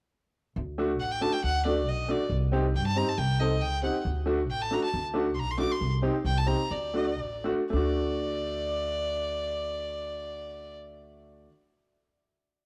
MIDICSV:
0, 0, Header, 1, 4, 480
1, 0, Start_track
1, 0, Tempo, 437637
1, 624, Time_signature, 2, 2, 24, 8
1, 7347, Tempo, 488998
1, 7827, Tempo, 540054
1, 8307, Tempo, 567108
1, 12478, End_track
2, 0, Start_track
2, 0, Title_t, "Violin"
2, 0, Program_c, 0, 40
2, 1095, Note_on_c, 0, 78, 83
2, 1222, Note_on_c, 0, 79, 86
2, 1239, Note_off_c, 0, 78, 0
2, 1334, Note_on_c, 0, 81, 88
2, 1351, Note_off_c, 0, 79, 0
2, 1454, Note_on_c, 0, 79, 80
2, 1471, Note_off_c, 0, 81, 0
2, 1578, Note_off_c, 0, 79, 0
2, 1588, Note_on_c, 0, 78, 99
2, 1808, Note_off_c, 0, 78, 0
2, 1822, Note_on_c, 0, 74, 73
2, 2068, Note_on_c, 0, 75, 73
2, 2084, Note_off_c, 0, 74, 0
2, 2317, Note_on_c, 0, 74, 70
2, 2334, Note_off_c, 0, 75, 0
2, 2548, Note_off_c, 0, 74, 0
2, 3030, Note_on_c, 0, 79, 82
2, 3136, Note_off_c, 0, 79, 0
2, 3152, Note_on_c, 0, 81, 100
2, 3265, Note_on_c, 0, 82, 89
2, 3282, Note_off_c, 0, 81, 0
2, 3389, Note_on_c, 0, 81, 84
2, 3405, Note_off_c, 0, 82, 0
2, 3492, Note_on_c, 0, 79, 92
2, 3509, Note_off_c, 0, 81, 0
2, 3730, Note_on_c, 0, 75, 76
2, 3746, Note_off_c, 0, 79, 0
2, 3965, Note_on_c, 0, 79, 83
2, 3981, Note_off_c, 0, 75, 0
2, 4206, Note_off_c, 0, 79, 0
2, 4212, Note_on_c, 0, 78, 62
2, 4436, Note_off_c, 0, 78, 0
2, 4943, Note_on_c, 0, 79, 76
2, 5068, Note_on_c, 0, 81, 89
2, 5085, Note_off_c, 0, 79, 0
2, 5198, Note_on_c, 0, 82, 80
2, 5215, Note_off_c, 0, 81, 0
2, 5304, Note_off_c, 0, 82, 0
2, 5314, Note_on_c, 0, 81, 78
2, 5525, Note_off_c, 0, 81, 0
2, 5865, Note_on_c, 0, 84, 62
2, 5919, Note_on_c, 0, 82, 93
2, 5936, Note_off_c, 0, 84, 0
2, 6042, Note_on_c, 0, 84, 86
2, 6059, Note_off_c, 0, 82, 0
2, 6137, Note_off_c, 0, 84, 0
2, 6144, Note_on_c, 0, 86, 83
2, 6276, Note_on_c, 0, 84, 75
2, 6293, Note_off_c, 0, 86, 0
2, 6498, Note_off_c, 0, 84, 0
2, 6870, Note_on_c, 0, 79, 79
2, 6995, Note_on_c, 0, 81, 86
2, 7011, Note_off_c, 0, 79, 0
2, 7102, Note_on_c, 0, 82, 78
2, 7118, Note_off_c, 0, 81, 0
2, 7363, Note_on_c, 0, 74, 68
2, 7378, Note_off_c, 0, 82, 0
2, 8067, Note_off_c, 0, 74, 0
2, 8307, Note_on_c, 0, 74, 81
2, 10875, Note_off_c, 0, 74, 0
2, 12478, End_track
3, 0, Start_track
3, 0, Title_t, "Upright piano"
3, 0, Program_c, 1, 0
3, 856, Note_on_c, 1, 57, 75
3, 861, Note_on_c, 1, 62, 71
3, 870, Note_on_c, 1, 66, 80
3, 979, Note_off_c, 1, 57, 0
3, 982, Note_off_c, 1, 62, 0
3, 986, Note_off_c, 1, 66, 0
3, 1328, Note_on_c, 1, 57, 63
3, 1331, Note_on_c, 1, 62, 59
3, 1341, Note_on_c, 1, 66, 64
3, 1455, Note_off_c, 1, 57, 0
3, 1456, Note_off_c, 1, 62, 0
3, 1461, Note_off_c, 1, 66, 0
3, 1811, Note_on_c, 1, 57, 67
3, 1817, Note_on_c, 1, 62, 56
3, 1831, Note_on_c, 1, 66, 65
3, 1936, Note_off_c, 1, 57, 0
3, 1939, Note_off_c, 1, 62, 0
3, 1946, Note_off_c, 1, 66, 0
3, 2285, Note_on_c, 1, 57, 59
3, 2288, Note_on_c, 1, 62, 56
3, 2305, Note_on_c, 1, 66, 65
3, 2412, Note_off_c, 1, 57, 0
3, 2414, Note_off_c, 1, 62, 0
3, 2422, Note_off_c, 1, 66, 0
3, 2762, Note_on_c, 1, 60, 77
3, 2772, Note_on_c, 1, 63, 66
3, 2776, Note_on_c, 1, 67, 87
3, 2891, Note_off_c, 1, 60, 0
3, 2895, Note_off_c, 1, 63, 0
3, 2897, Note_off_c, 1, 67, 0
3, 3242, Note_on_c, 1, 60, 59
3, 3253, Note_on_c, 1, 63, 56
3, 3256, Note_on_c, 1, 67, 65
3, 3370, Note_off_c, 1, 60, 0
3, 3375, Note_off_c, 1, 63, 0
3, 3377, Note_off_c, 1, 67, 0
3, 3734, Note_on_c, 1, 60, 56
3, 3734, Note_on_c, 1, 63, 55
3, 3738, Note_on_c, 1, 69, 71
3, 3855, Note_off_c, 1, 60, 0
3, 3855, Note_off_c, 1, 63, 0
3, 3857, Note_off_c, 1, 69, 0
3, 4193, Note_on_c, 1, 60, 53
3, 4204, Note_on_c, 1, 63, 49
3, 4207, Note_on_c, 1, 67, 65
3, 4324, Note_off_c, 1, 60, 0
3, 4329, Note_off_c, 1, 63, 0
3, 4331, Note_off_c, 1, 67, 0
3, 4670, Note_on_c, 1, 57, 72
3, 4674, Note_on_c, 1, 62, 61
3, 4683, Note_on_c, 1, 66, 83
3, 4801, Note_off_c, 1, 57, 0
3, 4804, Note_off_c, 1, 62, 0
3, 4808, Note_off_c, 1, 66, 0
3, 5164, Note_on_c, 1, 57, 59
3, 5170, Note_on_c, 1, 62, 52
3, 5186, Note_on_c, 1, 66, 68
3, 5287, Note_off_c, 1, 57, 0
3, 5290, Note_off_c, 1, 62, 0
3, 5298, Note_off_c, 1, 66, 0
3, 5633, Note_on_c, 1, 57, 75
3, 5637, Note_on_c, 1, 62, 66
3, 5652, Note_on_c, 1, 66, 80
3, 5760, Note_off_c, 1, 57, 0
3, 5762, Note_off_c, 1, 62, 0
3, 5769, Note_off_c, 1, 66, 0
3, 6116, Note_on_c, 1, 57, 65
3, 6127, Note_on_c, 1, 62, 52
3, 6135, Note_on_c, 1, 66, 67
3, 6239, Note_off_c, 1, 57, 0
3, 6245, Note_off_c, 1, 62, 0
3, 6249, Note_off_c, 1, 66, 0
3, 6603, Note_on_c, 1, 60, 69
3, 6612, Note_on_c, 1, 63, 74
3, 6614, Note_on_c, 1, 67, 85
3, 6723, Note_off_c, 1, 60, 0
3, 6727, Note_off_c, 1, 63, 0
3, 6729, Note_off_c, 1, 67, 0
3, 7088, Note_on_c, 1, 60, 58
3, 7090, Note_on_c, 1, 63, 52
3, 7100, Note_on_c, 1, 67, 63
3, 7215, Note_off_c, 1, 60, 0
3, 7217, Note_off_c, 1, 63, 0
3, 7221, Note_off_c, 1, 67, 0
3, 7580, Note_on_c, 1, 57, 61
3, 7587, Note_on_c, 1, 62, 58
3, 7596, Note_on_c, 1, 66, 69
3, 7702, Note_off_c, 1, 57, 0
3, 7705, Note_off_c, 1, 62, 0
3, 7709, Note_off_c, 1, 66, 0
3, 8051, Note_on_c, 1, 57, 68
3, 8055, Note_on_c, 1, 62, 60
3, 8064, Note_on_c, 1, 66, 77
3, 8177, Note_off_c, 1, 57, 0
3, 8179, Note_off_c, 1, 62, 0
3, 8183, Note_off_c, 1, 66, 0
3, 8283, Note_on_c, 1, 57, 65
3, 8310, Note_on_c, 1, 62, 61
3, 8335, Note_on_c, 1, 66, 67
3, 11456, Note_off_c, 1, 57, 0
3, 11469, Note_off_c, 1, 62, 0
3, 11481, Note_off_c, 1, 66, 0
3, 12478, End_track
4, 0, Start_track
4, 0, Title_t, "Upright bass"
4, 0, Program_c, 2, 32
4, 615, Note_on_c, 2, 38, 88
4, 1085, Note_off_c, 2, 38, 0
4, 1085, Note_on_c, 2, 33, 77
4, 1377, Note_off_c, 2, 33, 0
4, 1573, Note_on_c, 2, 38, 78
4, 2042, Note_off_c, 2, 38, 0
4, 2042, Note_on_c, 2, 35, 81
4, 2335, Note_off_c, 2, 35, 0
4, 2518, Note_on_c, 2, 36, 79
4, 3006, Note_on_c, 2, 43, 77
4, 3023, Note_off_c, 2, 36, 0
4, 3297, Note_off_c, 2, 43, 0
4, 3487, Note_on_c, 2, 36, 82
4, 3954, Note_off_c, 2, 36, 0
4, 3954, Note_on_c, 2, 37, 76
4, 4248, Note_off_c, 2, 37, 0
4, 4442, Note_on_c, 2, 38, 80
4, 4924, Note_off_c, 2, 38, 0
4, 4924, Note_on_c, 2, 33, 81
4, 5213, Note_off_c, 2, 33, 0
4, 5414, Note_on_c, 2, 38, 79
4, 5897, Note_off_c, 2, 38, 0
4, 5897, Note_on_c, 2, 35, 89
4, 6179, Note_off_c, 2, 35, 0
4, 6372, Note_on_c, 2, 36, 75
4, 6658, Note_off_c, 2, 36, 0
4, 6850, Note_on_c, 2, 36, 82
4, 7149, Note_off_c, 2, 36, 0
4, 7353, Note_on_c, 2, 38, 75
4, 7834, Note_off_c, 2, 38, 0
4, 7834, Note_on_c, 2, 33, 77
4, 8120, Note_off_c, 2, 33, 0
4, 8309, Note_on_c, 2, 38, 83
4, 11468, Note_off_c, 2, 38, 0
4, 12478, End_track
0, 0, End_of_file